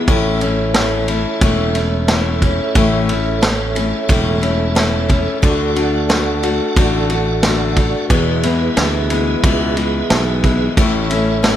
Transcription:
0.07 fretless electric bass A1, steel-string acoustic guitar A2 E3 A3 C#4 E4, tonewheel organ A4 C#5 E5, kick, ride
0.41 steel-string acoustic guitar A3 C#4 E4, ride
0.74 steel-string acoustic guitar E3 A3 C#4 E4, snare, ride
1.08 steel-string acoustic guitar A3 C#4 E4, ride
1.41 fretless electric bass E1, steel-string acoustic guitar A2 E3 A3 C#4 E4, kick, ride
1.75 steel-string acoustic guitar A3 C#4 E4, ride
2.08 steel-string acoustic guitar E3 A3 C#4 E4, snare, ride
2.42 steel-string acoustic guitar A3 C#4 E4, kick, ride
2.75 fretless electric bass A1, steel-string acoustic guitar A2 E3 A3 C#4 E4, kick, ride
3.09 steel-string acoustic guitar A3 C#4 E4, ride
3.41 steel-string acoustic guitar E3 A3 C#4 E4, snare, ride
3.75 steel-string acoustic guitar A3 C#4 E4, ride
4.09 fretless electric bass E1, steel-string acoustic guitar A2 E3 A3 C#4 E4, kick, ride
4.42 steel-string acoustic guitar A3 C#4 E4, ride
4.75 steel-string acoustic guitar E3 A3 C#4 E4, snare, ride
5.09 steel-string acoustic guitar A3 C#4 E4, kick, ride
5.42 fretless electric bass D2, steel-string acoustic guitar D3 A3 D4 F#4, tonewheel organ A4 D5 F#5, kick, ride
5.76 steel-string acoustic guitar A3 D4 F#4, ride
6.09 steel-string acoustic guitar D3 A3 D4 F#4, snare, ride
6.43 steel-string acoustic guitar A3 D4 F#4, ride
6.76 fretless electric bass A1, steel-string acoustic guitar D3 A3 D4 F#4, kick, ride
7.10 steel-string acoustic guitar A3 D4 F#4, ride
7.43 steel-string acoustic guitar D3 A3 D4 F#4, snare, ride
7.76 steel-string acoustic guitar A3 D4 F#4, kick, ride
8.09 steel-string acoustic guitar E2 B2 E3 G#3 B3 E4, fretless electric bass E2, tonewheel organ G#4 B4 E5, kick, ride
8.43 steel-string acoustic guitar E3 G#3 B3 E4, ride
8.77 fretless electric bass D2, steel-string acoustic guitar E3 G#3 B3 E4, snare, ride
9.10 steel-string acoustic guitar E3 G#3 B3 E4, ride
9.43 fretless electric bass C#2, steel-string acoustic guitar E2 B2 E3 G#3 B3 E4, kick, ride
9.77 steel-string acoustic guitar E3 G#3 B3 E4, ride
10.10 fretless electric bass B1, steel-string acoustic guitar E3 G#3 B3 E4, snare, ride
10.44 steel-string acoustic guitar E3 G#3 B3 E4, kick, ride
10.77 fretless electric bass A1, steel-string acoustic guitar A2 E3 A3 C#4 E4, tonewheel organ A4 C#5 E5, kick, ride
11.10 steel-string acoustic guitar A3 C#4 E4, ride
11.43 steel-string acoustic guitar E3 A3 C#4 E4, snare, ride

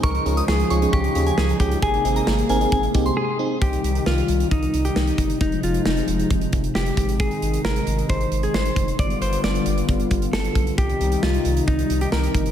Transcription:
Already playing: analog synth pad G#3 D#4
0.03 analog synth bass C#2, analog synth pad C#3 F3, clean electric guitar A#4, synth bell C#6, kick, closed hi-hat
0.15 closed hi-hat
0.26 analog synth bass C#2, fm electric piano C#4 F4 G#4, closed hi-hat
0.37 synth bell D#6, closed hi-hat
0.48 analog synth bass C#2, clean electric guitar G#4, snare
0.60 closed hi-hat
0.70 analog synth bass C#2, fm electric piano C#4 F4 G#4, synth bell C#6, closed hi-hat
0.82 fm electric piano C#4 F4 G#4, closed hi-hat
0.93 analog synth bass C#2, clean electric guitar G4, synth bell C#6, kick, closed hi-hat
1.04 closed hi-hat
1.15 analog synth bass D#2, fm electric piano C#4 F4 G#4, closed hi-hat
1.26 synth bell G#5, closed hi-hat
1.38 analog synth bass C#2, clean electric guitar G#4, snare
1.49 closed hi-hat
1.60 analog synth bass C#2, fm electric piano C#4 F4 G#4, clean electric guitar G4, kick, closed hi-hat
1.71 closed hi-hat
1.82 analog synth bass G#1, analog synth pad C3 A#3, clean electric guitar G#4, synth bell G#5, kick, closed hi-hat
1.94 closed hi-hat
2.05 analog synth bass G#1, fm electric piano C4 D#4 G#4, closed hi-hat
2.16 synth bell A#5, closed hi-hat
2.27 analog synth bass G#1, snare
2.38 closed hi-hat
2.49 analog synth bass G#1, fm electric piano C4 D#4 A#4, synth bell G#5, closed hi-hat
2.61 fm electric piano C4 D#4 G#4, closed hi-hat
2.72 analog synth bass G#1, synth bell G#5, kick, closed hi-hat
2.83 closed hi-hat
2.94 analog synth bass C2, fm electric piano C4 D#4 G4, kick, closed hi-hat
3.06 synth bell C6, closed hi-hat
3.17 clean electric guitar G#4
3.39 fm electric piano C4 D#4 G#4
3.62 analog synth bass C2, analog synth pad C3 D#3 G3 D#4, clean electric guitar G4, kick, closed hi-hat
3.73 closed hi-hat
3.84 analog synth bass C2, closed hi-hat
3.95 closed hi-hat
4.06 analog synth bass C2, clean electric guitar F4, snare
4.18 closed hi-hat
4.28 analog synth bass C2, closed hi-hat
4.40 closed hi-hat
4.51 analog synth bass C2, clean electric guitar D#4, kick, closed hi-hat
4.62 closed hi-hat
4.74 analog synth bass C2, closed hi-hat
4.85 clean electric guitar G4, closed hi-hat
4.96 analog synth bass C2, clean electric guitar D#4, snare
5.07 closed hi-hat
5.18 analog synth bass G1, kick, closed hi-hat
5.30 closed hi-hat
5.41 analog synth bass F1, analog synth pad F3 G#3, clean electric guitar D#4, kick, closed hi-hat
5.52 closed hi-hat
5.63 analog synth bass F1, clean electric guitar F4, closed hi-hat
5.74 closed hi-hat
5.85 analog synth bass F1, clean electric guitar D#4, snare
5.97 closed hi-hat
6.08 analog synth bass F1, closed hi-hat
6.19 closed hi-hat
6.30 analog synth bass F1, kick, closed hi-hat
6.41 closed hi-hat
6.53 analog synth bass F1, kick, closed hi-hat
6.64 closed hi-hat
6.75 analog synth bass F1, clean electric guitar G4, snare
6.86 closed hi-hat
6.97 analog synth bass G#1, analog synth pad D#3 G#3 D#4, kick, closed hi-hat
7.09 closed hi-hat
7.20 clean electric guitar G#4, kick, closed hi-hat
7.31 closed hi-hat
7.42 analog synth bass G#1, closed hi-hat
7.54 closed hi-hat
7.64 analog synth bass G#1, clean electric guitar A#4, snare
7.76 closed hi-hat
7.87 analog synth bass G#1, closed hi-hat
7.99 closed hi-hat
8.09 analog synth bass G#1, clean electric guitar C5, kick, closed hi-hat
8.21 closed hi-hat
8.32 analog synth bass G#1, closed hi-hat
8.43 clean electric guitar G#4, closed hi-hat
8.54 analog synth bass G#1, clean electric guitar C5, snare
8.65 closed hi-hat
8.76 analog synth bass F1, kick, closed hi-hat
8.88 closed hi-hat
8.99 analog synth bass G1, analog synth pad D3 G3 B3 F4, clean electric guitar D5, kick, closed hi-hat
9.10 closed hi-hat
9.21 analog synth bass G1, clean electric guitar C5, closed hi-hat
9.33 closed hi-hat
9.44 analog synth bass G1, clean electric guitar D5, snare
9.55 closed hi-hat
9.66 analog synth bass G1, closed hi-hat
9.78 closed hi-hat
9.88 analog synth bass G1, kick, closed hi-hat
10.00 closed hi-hat
10.11 analog synth bass G1, kick, closed hi-hat
10.22 closed hi-hat
10.33 analog synth bass G1, clean electric guitar A4, snare
10.44 closed hi-hat
10.55 analog synth bass B1, kick, closed hi-hat
10.67 closed hi-hat
10.78 analog synth bass C2, analog synth pad C3 D#3 G3 D#4, clean electric guitar G4, kick, closed hi-hat
10.89 closed hi-hat
11.01 analog synth bass C2, closed hi-hat
11.12 closed hi-hat
11.23 analog synth bass C2, clean electric guitar F4, snare
11.34 closed hi-hat
11.45 analog synth bass C2, closed hi-hat
11.57 closed hi-hat
11.67 analog synth bass C2, clean electric guitar D#4, kick, closed hi-hat
11.79 closed hi-hat
11.90 analog synth bass C2, closed hi-hat
12.01 clean electric guitar G4, closed hi-hat
12.12 analog synth bass C2, clean electric guitar A#4, snare
12.23 closed hi-hat
12.35 analog synth bass G1, kick, closed hi-hat
12.46 closed hi-hat

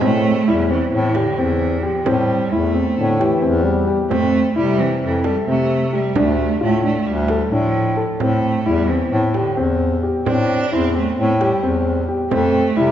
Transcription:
0.01 bass clarinet A2, cello A3, grand piano C4, frame drum
0.47 bass clarinet E2, cello G3, grand piano E4
0.70 cello E3, grand piano C4
0.92 bass clarinet A2, cello E3, frame drum
1.15 cello D3, grand piano G4, frame drum
1.38 bass clarinet E2, cello E3, grand piano C4
1.83 cello F3, grand piano G4
2.06 bass clarinet A2, cello G3, grand piano C4, frame drum
2.51 bass clarinet E2, cello A3, grand piano E4
2.74 grand piano C4
2.97 bass clarinet A2, french horn D3, frame drum
3.20 french horn E3, grand piano G4, frame drum
3.42 bass clarinet E2, grand piano C4
3.65 french horn G3
3.87 grand piano G4
4.10 bass clarinet F2, cello A3, grand piano C4, frame drum
4.56 bass clarinet C3, cello G3, grand piano E4
4.79 cello E3, grand piano C4
5.02 bass clarinet F2, cello E3, frame drum
5.24 cello G3, grand piano A4, frame drum
5.47 bass clarinet C3, cello A3, grand piano C4
5.93 cello G3, grand piano G4
6.16 bass clarinet D2, cello A3, grand piano D4, frame drum
6.60 bass clarinet A2, cello A3, grand piano F4
6.83 cello A3, grand piano D4, frame drum
7.05 bass clarinet D2, cello G3
7.28 grand piano A4, frame drum
7.52 bass clarinet A2, cello F3, grand piano D4, frame drum
7.97 grand piano A4
8.20 bass clarinet A2, cello A3, grand piano C4, frame drum
8.65 bass clarinet E2, cello G3, grand piano E4
8.89 cello E3, grand piano C4
9.11 bass clarinet A2, cello E3, frame drum
9.34 cello D3, grand piano G4, frame drum
9.57 bass clarinet E2, grand piano C4
10.03 grand piano G4
10.26 bass clarinet A2, grand piano C4, cello D4, frame drum
10.72 bass clarinet E2, cello C4, grand piano E4
10.95 cello A3, grand piano C4
11.17 bass clarinet A2, cello A3, frame drum
11.40 cello G3, grand piano G4, frame drum
11.63 bass clarinet E2, grand piano C4
12.08 grand piano G4
12.31 bass clarinet F2, cello A3, grand piano C4, frame drum
12.76 bass clarinet C3, cello G3, grand piano E4

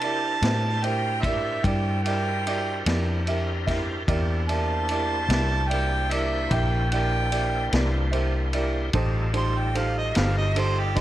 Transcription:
Already playing: fingered electric bass C3, tonewheel organ D4 E4 A#4 C5, harmonica A5
0.01 upright piano E4 G4 A#4 D5, ride
0.42 fingered electric bass A2, upright piano E4 G4 A#4 C5, snare, ride
0.84 upright piano E4 G4 A#4 C5, harmonica G5, ride
1.22 upright piano E4 G4 A#4 D5, harmonica E5, kick, ride
1.64 fingered electric bass G2, upright piano E4 G4 A#4 D5, harmonica G5, kick, ride
2.03 upright piano E4 G4 A#4 D5, harmonica G5, ride
2.47 upright piano E4 G4 A#4 D5, ride
2.86 fingered electric bass F2, upright piano E4 G4 A#4 D5, snare, ride
3.27 upright piano E4 G4 A#4 E5, ride
3.67 upright piano E4 G4 A#4 E5, kick, snare, ride
4.07 fingered electric bass E2, tonewheel organ A#3 D4 E4 C5, upright piano E4 G4 A#4 D5, kick, ride
4.48 upright piano E4 G4 A#4 D5, harmonica A5, ride
4.89 upright piano E4 G4 A#4 D5, ride
5.29 fingered electric bass C2, upright piano E4 G4 A#4 D5, snare, ride
5.68 upright piano E4 G4 A#4 D5, harmonica G5, ride
6.11 upright piano E4 G4 A#4 D5, harmonica E5, ride
6.51 fingered electric bass A#1, upright piano E4 G4 A#4 E5, harmonica G5, kick, ride
6.92 upright piano E4 G4 A#4 D5, harmonica G5, ride
7.31 upright piano E4 G4 A#4 D5, ride
7.72 fingered electric bass C2, upright piano E4 G4 A#4 D5, snare, ride
8.11 upright piano E4 G4 A#4 C5, ride
8.53 upright piano E4 G4 A#4 D5, ride
8.93 fingered electric bass A1, tonewheel organ G3 D#4 F4 A4, upright piano D#4 G4 A4 C5, kick, ride
9.34 upright piano D#4 G4 A4 C5, harmonica C6, ride
9.58 harmonica G5
9.75 upright piano D#4 G4 A4 C5, harmonica F5, ride
9.98 harmonica D#5
10.15 fingered electric bass G1, upright piano D#4 G4 A4 C5, harmonica F5, snare, ride
10.38 harmonica D#5
10.56 upright piano D#4 G4 A4 C5, ride
10.60 harmonica C5
10.79 harmonica G4
10.94 upright piano D#4 G4 A4 D#5, harmonica C5, kick, snare, ride

